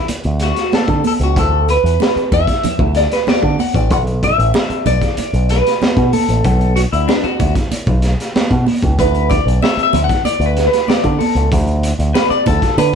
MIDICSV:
0, 0, Header, 1, 5, 480
1, 0, Start_track
1, 0, Tempo, 634921
1, 1030, Time_signature, 4, 2, 24, 8
1, 9791, End_track
2, 0, Start_track
2, 0, Title_t, "Clean electric guitar"
2, 0, Program_c, 0, 27
2, 323, Note_on_c, 0, 66, 82
2, 540, Note_off_c, 0, 66, 0
2, 565, Note_on_c, 0, 69, 77
2, 782, Note_off_c, 0, 69, 0
2, 811, Note_on_c, 0, 69, 95
2, 848, Note_off_c, 0, 69, 0
2, 933, Note_on_c, 0, 66, 91
2, 1042, Note_off_c, 0, 66, 0
2, 1052, Note_on_c, 0, 69, 99
2, 1284, Note_off_c, 0, 69, 0
2, 1287, Note_on_c, 0, 71, 109
2, 1763, Note_off_c, 0, 71, 0
2, 1766, Note_on_c, 0, 76, 104
2, 2211, Note_off_c, 0, 76, 0
2, 2243, Note_on_c, 0, 74, 86
2, 2351, Note_off_c, 0, 74, 0
2, 2366, Note_on_c, 0, 71, 88
2, 2484, Note_off_c, 0, 71, 0
2, 2484, Note_on_c, 0, 74, 82
2, 2720, Note_off_c, 0, 74, 0
2, 2721, Note_on_c, 0, 78, 93
2, 2830, Note_off_c, 0, 78, 0
2, 2839, Note_on_c, 0, 74, 92
2, 2961, Note_off_c, 0, 74, 0
2, 2968, Note_on_c, 0, 78, 115
2, 3032, Note_off_c, 0, 78, 0
2, 3206, Note_on_c, 0, 76, 112
2, 3676, Note_off_c, 0, 76, 0
2, 3679, Note_on_c, 0, 74, 94
2, 4159, Note_off_c, 0, 74, 0
2, 4162, Note_on_c, 0, 71, 93
2, 4609, Note_off_c, 0, 71, 0
2, 4637, Note_on_c, 0, 69, 88
2, 5106, Note_off_c, 0, 69, 0
2, 5109, Note_on_c, 0, 66, 92
2, 5147, Note_off_c, 0, 66, 0
2, 5235, Note_on_c, 0, 64, 71
2, 5351, Note_on_c, 0, 62, 90
2, 5359, Note_off_c, 0, 64, 0
2, 5472, Note_on_c, 0, 66, 81
2, 5477, Note_off_c, 0, 62, 0
2, 5697, Note_off_c, 0, 66, 0
2, 6800, Note_on_c, 0, 71, 101
2, 7029, Note_on_c, 0, 74, 90
2, 7044, Note_off_c, 0, 71, 0
2, 7274, Note_off_c, 0, 74, 0
2, 7277, Note_on_c, 0, 76, 105
2, 7423, Note_off_c, 0, 76, 0
2, 7431, Note_on_c, 0, 76, 100
2, 7587, Note_off_c, 0, 76, 0
2, 7590, Note_on_c, 0, 78, 111
2, 7739, Note_off_c, 0, 78, 0
2, 7749, Note_on_c, 0, 74, 114
2, 7906, Note_on_c, 0, 71, 91
2, 7914, Note_off_c, 0, 74, 0
2, 8057, Note_off_c, 0, 71, 0
2, 8066, Note_on_c, 0, 71, 73
2, 8229, Note_on_c, 0, 74, 89
2, 8232, Note_off_c, 0, 71, 0
2, 8459, Note_on_c, 0, 69, 73
2, 8475, Note_off_c, 0, 74, 0
2, 8686, Note_off_c, 0, 69, 0
2, 9181, Note_on_c, 0, 71, 93
2, 9294, Note_off_c, 0, 71, 0
2, 9301, Note_on_c, 0, 74, 105
2, 9414, Note_off_c, 0, 74, 0
2, 9430, Note_on_c, 0, 69, 97
2, 9650, Note_off_c, 0, 69, 0
2, 9665, Note_on_c, 0, 71, 100
2, 9791, Note_off_c, 0, 71, 0
2, 9791, End_track
3, 0, Start_track
3, 0, Title_t, "Picked electric bass"
3, 0, Program_c, 1, 34
3, 188, Note_on_c, 1, 38, 100
3, 390, Note_off_c, 1, 38, 0
3, 666, Note_on_c, 1, 50, 106
3, 768, Note_off_c, 1, 50, 0
3, 904, Note_on_c, 1, 37, 94
3, 1032, Note_off_c, 1, 37, 0
3, 1032, Note_on_c, 1, 38, 100
3, 1334, Note_off_c, 1, 38, 0
3, 1388, Note_on_c, 1, 40, 86
3, 1491, Note_off_c, 1, 40, 0
3, 1752, Note_on_c, 1, 40, 91
3, 1853, Note_off_c, 1, 40, 0
3, 2107, Note_on_c, 1, 38, 99
3, 2312, Note_off_c, 1, 38, 0
3, 2592, Note_on_c, 1, 50, 101
3, 2694, Note_off_c, 1, 50, 0
3, 2830, Note_on_c, 1, 33, 96
3, 2954, Note_off_c, 1, 33, 0
3, 2954, Note_on_c, 1, 35, 108
3, 3257, Note_off_c, 1, 35, 0
3, 3311, Note_on_c, 1, 33, 98
3, 3414, Note_off_c, 1, 33, 0
3, 3671, Note_on_c, 1, 35, 86
3, 3774, Note_off_c, 1, 35, 0
3, 4031, Note_on_c, 1, 35, 89
3, 4235, Note_off_c, 1, 35, 0
3, 4511, Note_on_c, 1, 47, 92
3, 4614, Note_off_c, 1, 47, 0
3, 4752, Note_on_c, 1, 33, 82
3, 4855, Note_off_c, 1, 33, 0
3, 4870, Note_on_c, 1, 35, 102
3, 5174, Note_off_c, 1, 35, 0
3, 5236, Note_on_c, 1, 38, 84
3, 5337, Note_off_c, 1, 38, 0
3, 5593, Note_on_c, 1, 38, 86
3, 5695, Note_off_c, 1, 38, 0
3, 5948, Note_on_c, 1, 35, 94
3, 6152, Note_off_c, 1, 35, 0
3, 6432, Note_on_c, 1, 47, 97
3, 6533, Note_off_c, 1, 47, 0
3, 6673, Note_on_c, 1, 37, 92
3, 6774, Note_off_c, 1, 37, 0
3, 6796, Note_on_c, 1, 38, 103
3, 7096, Note_off_c, 1, 38, 0
3, 7149, Note_on_c, 1, 35, 90
3, 7251, Note_off_c, 1, 35, 0
3, 7510, Note_on_c, 1, 38, 100
3, 7611, Note_off_c, 1, 38, 0
3, 7860, Note_on_c, 1, 38, 89
3, 8065, Note_off_c, 1, 38, 0
3, 8348, Note_on_c, 1, 50, 107
3, 8449, Note_off_c, 1, 50, 0
3, 8582, Note_on_c, 1, 37, 89
3, 8685, Note_off_c, 1, 37, 0
3, 8707, Note_on_c, 1, 38, 103
3, 9008, Note_off_c, 1, 38, 0
3, 9064, Note_on_c, 1, 38, 96
3, 9165, Note_off_c, 1, 38, 0
3, 9424, Note_on_c, 1, 38, 101
3, 9525, Note_off_c, 1, 38, 0
3, 9659, Note_on_c, 1, 50, 123
3, 9761, Note_off_c, 1, 50, 0
3, 9791, End_track
4, 0, Start_track
4, 0, Title_t, "Muted picked electric bass strokes"
4, 68, Note_on_c, 9, 29, 50
4, 144, Note_off_c, 9, 29, 0
4, 1635, Note_on_c, 9, 29, 43
4, 1710, Note_off_c, 9, 29, 0
4, 1995, Note_on_c, 9, 29, 55
4, 2071, Note_off_c, 9, 29, 0
4, 3552, Note_on_c, 9, 29, 46
4, 3627, Note_off_c, 9, 29, 0
4, 3914, Note_on_c, 9, 29, 54
4, 3989, Note_off_c, 9, 29, 0
4, 5473, Note_on_c, 9, 29, 48
4, 5549, Note_off_c, 9, 29, 0
4, 5831, Note_on_c, 9, 29, 53
4, 5907, Note_off_c, 9, 29, 0
4, 7388, Note_on_c, 9, 29, 42
4, 7464, Note_off_c, 9, 29, 0
4, 7746, Note_on_c, 9, 29, 49
4, 7821, Note_off_c, 9, 29, 0
4, 9303, Note_on_c, 9, 29, 46
4, 9379, Note_off_c, 9, 29, 0
4, 9791, End_track
5, 0, Start_track
5, 0, Title_t, "Drums"
5, 63, Note_on_c, 9, 42, 97
5, 67, Note_on_c, 9, 62, 63
5, 139, Note_off_c, 9, 42, 0
5, 142, Note_off_c, 9, 62, 0
5, 178, Note_on_c, 9, 42, 36
5, 253, Note_off_c, 9, 42, 0
5, 299, Note_on_c, 9, 42, 74
5, 308, Note_on_c, 9, 38, 35
5, 374, Note_off_c, 9, 42, 0
5, 384, Note_off_c, 9, 38, 0
5, 426, Note_on_c, 9, 42, 51
5, 431, Note_on_c, 9, 38, 37
5, 502, Note_off_c, 9, 42, 0
5, 506, Note_off_c, 9, 38, 0
5, 548, Note_on_c, 9, 63, 71
5, 554, Note_on_c, 9, 38, 97
5, 624, Note_off_c, 9, 63, 0
5, 629, Note_off_c, 9, 38, 0
5, 662, Note_on_c, 9, 42, 34
5, 665, Note_on_c, 9, 36, 86
5, 738, Note_off_c, 9, 42, 0
5, 740, Note_off_c, 9, 36, 0
5, 787, Note_on_c, 9, 63, 92
5, 791, Note_on_c, 9, 46, 67
5, 863, Note_off_c, 9, 63, 0
5, 866, Note_off_c, 9, 46, 0
5, 914, Note_on_c, 9, 42, 53
5, 990, Note_off_c, 9, 42, 0
5, 1031, Note_on_c, 9, 36, 113
5, 1034, Note_on_c, 9, 42, 94
5, 1107, Note_off_c, 9, 36, 0
5, 1110, Note_off_c, 9, 42, 0
5, 1273, Note_on_c, 9, 62, 34
5, 1275, Note_on_c, 9, 42, 77
5, 1348, Note_off_c, 9, 62, 0
5, 1351, Note_off_c, 9, 42, 0
5, 1408, Note_on_c, 9, 42, 49
5, 1484, Note_off_c, 9, 42, 0
5, 1512, Note_on_c, 9, 63, 70
5, 1528, Note_on_c, 9, 38, 119
5, 1588, Note_off_c, 9, 63, 0
5, 1603, Note_off_c, 9, 38, 0
5, 1640, Note_on_c, 9, 42, 36
5, 1716, Note_off_c, 9, 42, 0
5, 1754, Note_on_c, 9, 36, 88
5, 1754, Note_on_c, 9, 42, 72
5, 1756, Note_on_c, 9, 62, 56
5, 1829, Note_off_c, 9, 42, 0
5, 1830, Note_off_c, 9, 36, 0
5, 1831, Note_off_c, 9, 62, 0
5, 1871, Note_on_c, 9, 36, 83
5, 1876, Note_on_c, 9, 42, 57
5, 1882, Note_on_c, 9, 38, 40
5, 1946, Note_off_c, 9, 36, 0
5, 1951, Note_off_c, 9, 42, 0
5, 1957, Note_off_c, 9, 38, 0
5, 1992, Note_on_c, 9, 42, 87
5, 2002, Note_on_c, 9, 62, 63
5, 2002, Note_on_c, 9, 64, 83
5, 2067, Note_off_c, 9, 42, 0
5, 2078, Note_off_c, 9, 62, 0
5, 2078, Note_off_c, 9, 64, 0
5, 2110, Note_on_c, 9, 36, 107
5, 2186, Note_off_c, 9, 36, 0
5, 2227, Note_on_c, 9, 42, 81
5, 2237, Note_on_c, 9, 38, 35
5, 2303, Note_off_c, 9, 42, 0
5, 2313, Note_off_c, 9, 38, 0
5, 2355, Note_on_c, 9, 42, 58
5, 2359, Note_on_c, 9, 38, 36
5, 2431, Note_off_c, 9, 42, 0
5, 2435, Note_off_c, 9, 38, 0
5, 2473, Note_on_c, 9, 63, 85
5, 2479, Note_on_c, 9, 38, 107
5, 2548, Note_off_c, 9, 63, 0
5, 2555, Note_off_c, 9, 38, 0
5, 2591, Note_on_c, 9, 36, 81
5, 2666, Note_off_c, 9, 36, 0
5, 2716, Note_on_c, 9, 63, 85
5, 2720, Note_on_c, 9, 46, 62
5, 2792, Note_off_c, 9, 63, 0
5, 2796, Note_off_c, 9, 46, 0
5, 2831, Note_on_c, 9, 36, 86
5, 2835, Note_on_c, 9, 42, 52
5, 2906, Note_off_c, 9, 36, 0
5, 2911, Note_off_c, 9, 42, 0
5, 2952, Note_on_c, 9, 42, 83
5, 2954, Note_on_c, 9, 36, 102
5, 3028, Note_off_c, 9, 42, 0
5, 3030, Note_off_c, 9, 36, 0
5, 3077, Note_on_c, 9, 42, 38
5, 3153, Note_off_c, 9, 42, 0
5, 3197, Note_on_c, 9, 36, 91
5, 3198, Note_on_c, 9, 42, 82
5, 3203, Note_on_c, 9, 62, 36
5, 3272, Note_off_c, 9, 36, 0
5, 3273, Note_off_c, 9, 42, 0
5, 3278, Note_off_c, 9, 62, 0
5, 3324, Note_on_c, 9, 42, 52
5, 3400, Note_off_c, 9, 42, 0
5, 3433, Note_on_c, 9, 63, 81
5, 3439, Note_on_c, 9, 38, 127
5, 3508, Note_off_c, 9, 63, 0
5, 3515, Note_off_c, 9, 38, 0
5, 3555, Note_on_c, 9, 42, 36
5, 3630, Note_off_c, 9, 42, 0
5, 3673, Note_on_c, 9, 42, 81
5, 3673, Note_on_c, 9, 62, 59
5, 3673, Note_on_c, 9, 64, 88
5, 3748, Note_off_c, 9, 42, 0
5, 3749, Note_off_c, 9, 62, 0
5, 3749, Note_off_c, 9, 64, 0
5, 3792, Note_on_c, 9, 36, 81
5, 3794, Note_on_c, 9, 42, 54
5, 3800, Note_on_c, 9, 38, 43
5, 3867, Note_off_c, 9, 36, 0
5, 3870, Note_off_c, 9, 42, 0
5, 3876, Note_off_c, 9, 38, 0
5, 3910, Note_on_c, 9, 42, 88
5, 3918, Note_on_c, 9, 62, 59
5, 3985, Note_off_c, 9, 42, 0
5, 3994, Note_off_c, 9, 62, 0
5, 4035, Note_on_c, 9, 42, 36
5, 4110, Note_off_c, 9, 42, 0
5, 4152, Note_on_c, 9, 42, 81
5, 4162, Note_on_c, 9, 38, 36
5, 4228, Note_off_c, 9, 42, 0
5, 4238, Note_off_c, 9, 38, 0
5, 4283, Note_on_c, 9, 42, 59
5, 4288, Note_on_c, 9, 38, 39
5, 4359, Note_off_c, 9, 42, 0
5, 4363, Note_off_c, 9, 38, 0
5, 4397, Note_on_c, 9, 63, 84
5, 4404, Note_on_c, 9, 38, 106
5, 4473, Note_off_c, 9, 63, 0
5, 4480, Note_off_c, 9, 38, 0
5, 4510, Note_on_c, 9, 42, 38
5, 4512, Note_on_c, 9, 36, 90
5, 4585, Note_off_c, 9, 42, 0
5, 4587, Note_off_c, 9, 36, 0
5, 4634, Note_on_c, 9, 46, 69
5, 4637, Note_on_c, 9, 63, 89
5, 4709, Note_off_c, 9, 46, 0
5, 4712, Note_off_c, 9, 63, 0
5, 4756, Note_on_c, 9, 42, 54
5, 4832, Note_off_c, 9, 42, 0
5, 4871, Note_on_c, 9, 42, 81
5, 4873, Note_on_c, 9, 36, 113
5, 4947, Note_off_c, 9, 42, 0
5, 4949, Note_off_c, 9, 36, 0
5, 4995, Note_on_c, 9, 42, 39
5, 5071, Note_off_c, 9, 42, 0
5, 5115, Note_on_c, 9, 62, 37
5, 5116, Note_on_c, 9, 42, 83
5, 5190, Note_off_c, 9, 62, 0
5, 5191, Note_off_c, 9, 42, 0
5, 5240, Note_on_c, 9, 42, 49
5, 5316, Note_off_c, 9, 42, 0
5, 5356, Note_on_c, 9, 63, 69
5, 5359, Note_on_c, 9, 38, 125
5, 5432, Note_off_c, 9, 63, 0
5, 5435, Note_off_c, 9, 38, 0
5, 5471, Note_on_c, 9, 42, 37
5, 5547, Note_off_c, 9, 42, 0
5, 5592, Note_on_c, 9, 42, 81
5, 5594, Note_on_c, 9, 36, 89
5, 5594, Note_on_c, 9, 62, 63
5, 5668, Note_off_c, 9, 42, 0
5, 5669, Note_off_c, 9, 36, 0
5, 5669, Note_off_c, 9, 62, 0
5, 5711, Note_on_c, 9, 36, 97
5, 5712, Note_on_c, 9, 42, 58
5, 5718, Note_on_c, 9, 38, 42
5, 5787, Note_off_c, 9, 36, 0
5, 5788, Note_off_c, 9, 42, 0
5, 5793, Note_off_c, 9, 38, 0
5, 5833, Note_on_c, 9, 62, 58
5, 5834, Note_on_c, 9, 42, 94
5, 5909, Note_off_c, 9, 42, 0
5, 5909, Note_off_c, 9, 62, 0
5, 5946, Note_on_c, 9, 42, 37
5, 5950, Note_on_c, 9, 36, 102
5, 6022, Note_off_c, 9, 42, 0
5, 6026, Note_off_c, 9, 36, 0
5, 6065, Note_on_c, 9, 42, 77
5, 6075, Note_on_c, 9, 38, 35
5, 6141, Note_off_c, 9, 42, 0
5, 6150, Note_off_c, 9, 38, 0
5, 6201, Note_on_c, 9, 42, 57
5, 6205, Note_on_c, 9, 38, 36
5, 6276, Note_off_c, 9, 42, 0
5, 6280, Note_off_c, 9, 38, 0
5, 6318, Note_on_c, 9, 63, 75
5, 6320, Note_on_c, 9, 38, 107
5, 6393, Note_off_c, 9, 63, 0
5, 6395, Note_off_c, 9, 38, 0
5, 6430, Note_on_c, 9, 42, 39
5, 6432, Note_on_c, 9, 36, 81
5, 6505, Note_off_c, 9, 42, 0
5, 6507, Note_off_c, 9, 36, 0
5, 6551, Note_on_c, 9, 63, 88
5, 6560, Note_on_c, 9, 46, 73
5, 6627, Note_off_c, 9, 63, 0
5, 6635, Note_off_c, 9, 46, 0
5, 6672, Note_on_c, 9, 36, 94
5, 6678, Note_on_c, 9, 42, 54
5, 6748, Note_off_c, 9, 36, 0
5, 6754, Note_off_c, 9, 42, 0
5, 6794, Note_on_c, 9, 36, 114
5, 6795, Note_on_c, 9, 42, 86
5, 6870, Note_off_c, 9, 36, 0
5, 6871, Note_off_c, 9, 42, 0
5, 6914, Note_on_c, 9, 42, 36
5, 6990, Note_off_c, 9, 42, 0
5, 7028, Note_on_c, 9, 62, 37
5, 7036, Note_on_c, 9, 36, 100
5, 7036, Note_on_c, 9, 42, 82
5, 7104, Note_off_c, 9, 62, 0
5, 7112, Note_off_c, 9, 36, 0
5, 7112, Note_off_c, 9, 42, 0
5, 7168, Note_on_c, 9, 42, 46
5, 7244, Note_off_c, 9, 42, 0
5, 7276, Note_on_c, 9, 63, 73
5, 7286, Note_on_c, 9, 38, 114
5, 7352, Note_off_c, 9, 63, 0
5, 7362, Note_off_c, 9, 38, 0
5, 7400, Note_on_c, 9, 42, 40
5, 7475, Note_off_c, 9, 42, 0
5, 7508, Note_on_c, 9, 62, 54
5, 7508, Note_on_c, 9, 64, 82
5, 7518, Note_on_c, 9, 42, 80
5, 7583, Note_off_c, 9, 62, 0
5, 7583, Note_off_c, 9, 64, 0
5, 7594, Note_off_c, 9, 42, 0
5, 7631, Note_on_c, 9, 36, 99
5, 7636, Note_on_c, 9, 42, 55
5, 7642, Note_on_c, 9, 38, 38
5, 7707, Note_off_c, 9, 36, 0
5, 7712, Note_off_c, 9, 42, 0
5, 7717, Note_off_c, 9, 38, 0
5, 7750, Note_on_c, 9, 62, 60
5, 7756, Note_on_c, 9, 42, 81
5, 7826, Note_off_c, 9, 62, 0
5, 7832, Note_off_c, 9, 42, 0
5, 7872, Note_on_c, 9, 42, 38
5, 7948, Note_off_c, 9, 42, 0
5, 7988, Note_on_c, 9, 42, 72
5, 7997, Note_on_c, 9, 38, 36
5, 8063, Note_off_c, 9, 42, 0
5, 8073, Note_off_c, 9, 38, 0
5, 8114, Note_on_c, 9, 42, 57
5, 8119, Note_on_c, 9, 38, 40
5, 8190, Note_off_c, 9, 42, 0
5, 8194, Note_off_c, 9, 38, 0
5, 8226, Note_on_c, 9, 63, 81
5, 8238, Note_on_c, 9, 38, 104
5, 8301, Note_off_c, 9, 63, 0
5, 8313, Note_off_c, 9, 38, 0
5, 8346, Note_on_c, 9, 42, 35
5, 8347, Note_on_c, 9, 36, 80
5, 8421, Note_off_c, 9, 42, 0
5, 8422, Note_off_c, 9, 36, 0
5, 8470, Note_on_c, 9, 46, 74
5, 8473, Note_on_c, 9, 63, 79
5, 8545, Note_off_c, 9, 46, 0
5, 8549, Note_off_c, 9, 63, 0
5, 8591, Note_on_c, 9, 42, 53
5, 8667, Note_off_c, 9, 42, 0
5, 8707, Note_on_c, 9, 36, 121
5, 8707, Note_on_c, 9, 42, 97
5, 8782, Note_off_c, 9, 36, 0
5, 8782, Note_off_c, 9, 42, 0
5, 8824, Note_on_c, 9, 42, 34
5, 8899, Note_off_c, 9, 42, 0
5, 8946, Note_on_c, 9, 42, 89
5, 8950, Note_on_c, 9, 62, 36
5, 9022, Note_off_c, 9, 42, 0
5, 9026, Note_off_c, 9, 62, 0
5, 9069, Note_on_c, 9, 42, 47
5, 9145, Note_off_c, 9, 42, 0
5, 9188, Note_on_c, 9, 38, 115
5, 9189, Note_on_c, 9, 63, 78
5, 9263, Note_off_c, 9, 38, 0
5, 9264, Note_off_c, 9, 63, 0
5, 9307, Note_on_c, 9, 42, 37
5, 9383, Note_off_c, 9, 42, 0
5, 9420, Note_on_c, 9, 62, 60
5, 9424, Note_on_c, 9, 36, 93
5, 9425, Note_on_c, 9, 42, 83
5, 9495, Note_off_c, 9, 62, 0
5, 9500, Note_off_c, 9, 36, 0
5, 9501, Note_off_c, 9, 42, 0
5, 9542, Note_on_c, 9, 36, 88
5, 9546, Note_on_c, 9, 42, 57
5, 9551, Note_on_c, 9, 38, 41
5, 9618, Note_off_c, 9, 36, 0
5, 9621, Note_off_c, 9, 42, 0
5, 9627, Note_off_c, 9, 38, 0
5, 9662, Note_on_c, 9, 62, 68
5, 9667, Note_on_c, 9, 42, 89
5, 9738, Note_off_c, 9, 62, 0
5, 9743, Note_off_c, 9, 42, 0
5, 9791, End_track
0, 0, End_of_file